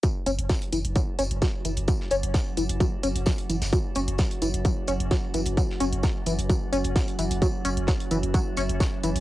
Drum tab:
HH |x-xxxxxxx-xxx-xx|x-xxx-xxx-xxxxxx|x-xxxxxxx-xxx-xx|x-xxx-xxx-xxxxxx|
TB |x-x-x-x-x-x-x-x-|x-x-x-x-x-x-x-xx|x-x-x-x-x-x-x-x-|x-x-x-x-x-x-x-x-|
SD |----o-------o---|-o--o-------o--o|----o-------o---|-o--o-------o---|
BD |o---o---o---o---|o---o---o---o---|o---o---o---o---|o---o---o---o---|

HH |x-xxxxxxx-xxx-xx|
TB |x-x-x-x-x-x-x-x-|
SD |----o-------o---|
BD |o---o---o---o---|